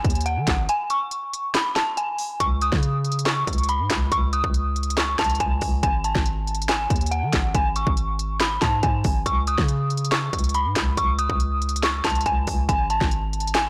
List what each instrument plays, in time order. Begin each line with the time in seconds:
Already playing: synth bell G#5
0.05 808-style bass D#2, kick, closed hi-hat
0.10 closed hi-hat
0.15 closed hi-hat
0.21 closed hi-hat
0.26 synth bell F#5, closed hi-hat
0.37 808-style bass D#3
0.47 808-style bass G#1, kick, snare, clap, closed hi-hat
0.69 synth bell G#5, closed hi-hat
0.90 synth bell C#6, closed hi-hat
1.11 closed hi-hat
1.34 closed hi-hat
1.54 synth bell B5, snare, clap, closed hi-hat
1.76 synth bell A5, snare, clap, closed hi-hat
1.97 synth bell G#5, closed hi-hat
2.18 open hi-hat
2.40 808-style bass C#2, synth bell C#6, kick, closed hi-hat
2.61 synth bell D#6, closed hi-hat
2.72 808-style bass C#3, kick, snare
2.83 closed hi-hat
3.05 closed hi-hat
3.12 closed hi-hat
3.19 closed hi-hat
3.26 synth bell C#6, snare, clap, closed hi-hat
3.47 808-style bass C#2, kick, closed hi-hat
3.53 closed hi-hat
3.58 closed hi-hat
3.63 closed hi-hat
3.69 synth bell B5, closed hi-hat
3.80 808-style bass G#2
3.90 808-style bass C#2, kick, snare, clap, closed hi-hat
4.12 808-style bass C#2, synth bell C#6, kick, closed hi-hat
4.33 synth bell D#6, closed hi-hat
4.44 808-style bass C#2, kick
4.54 closed hi-hat
4.76 closed hi-hat
4.83 closed hi-hat
4.90 closed hi-hat
4.97 synth bell C#6, snare, clap, closed hi-hat
5.19 808-style bass C#2, synth bell A5, kick, snare, clap, closed hi-hat
5.24 closed hi-hat
5.30 closed hi-hat
5.35 closed hi-hat
5.40 808-style bass C#2, synth bell G#5, kick, closed hi-hat
5.61 808-style bass C#2, kick, open hi-hat
5.83 808-style bass G#1, synth bell G#5, kick, closed hi-hat
6.04 synth bell A5, closed hi-hat
6.15 808-style bass G#1, kick, snare
6.26 closed hi-hat
6.47 closed hi-hat
6.55 closed hi-hat
6.62 closed hi-hat
6.69 synth bell G#5, snare, clap, closed hi-hat
6.90 808-style bass D#2, kick, closed hi-hat
6.96 closed hi-hat
7.01 closed hi-hat
7.06 closed hi-hat
7.11 synth bell F#5, closed hi-hat
7.22 808-style bass D#3
7.33 808-style bass G#1, kick, snare, clap, closed hi-hat
7.55 808-style bass G#1, synth bell G#5, kick, closed hi-hat
7.76 synth bell C#6, closed hi-hat
7.87 808-style bass G#1, kick
7.97 closed hi-hat
8.19 closed hi-hat
8.40 synth bell B5, snare, clap, closed hi-hat
8.62 808-style bass G#2, synth bell A5, kick, snare, clap, closed hi-hat
8.83 808-style bass G#2, synth bell G#5, kick, closed hi-hat
9.04 808-style bass G#1, kick, open hi-hat
9.26 808-style bass C#2, synth bell C#6, kick, closed hi-hat
9.47 synth bell D#6, closed hi-hat
9.58 808-style bass C#3, kick, snare
9.68 closed hi-hat
9.90 closed hi-hat
9.97 closed hi-hat
10.05 closed hi-hat
10.12 synth bell C#6, snare, clap, closed hi-hat
10.33 808-style bass C#2, kick, closed hi-hat
10.39 closed hi-hat
10.44 closed hi-hat
10.49 closed hi-hat
10.54 synth bell B5, closed hi-hat
10.65 808-style bass G#2
10.76 808-style bass C#2, kick, snare, clap, closed hi-hat
10.97 808-style bass C#2, synth bell C#6, kick, closed hi-hat
11.19 synth bell D#6, closed hi-hat
11.30 808-style bass C#2, kick
11.40 closed hi-hat
11.62 closed hi-hat
11.69 closed hi-hat
11.76 closed hi-hat
11.83 synth bell C#6, snare, clap, closed hi-hat
12.05 808-style bass C#2, synth bell A5, kick, snare, clap, closed hi-hat
12.10 closed hi-hat
12.15 closed hi-hat
12.21 closed hi-hat
12.26 808-style bass C#2, synth bell G#5, kick, closed hi-hat
12.47 808-style bass C#2, kick, open hi-hat
12.69 808-style bass G#1, synth bell G#5, kick, closed hi-hat
12.90 synth bell A5, closed hi-hat
13.01 808-style bass G#1, kick, snare
13.11 closed hi-hat
13.33 closed hi-hat
13.40 closed hi-hat
13.47 closed hi-hat
13.55 synth bell G#5, snare, clap, closed hi-hat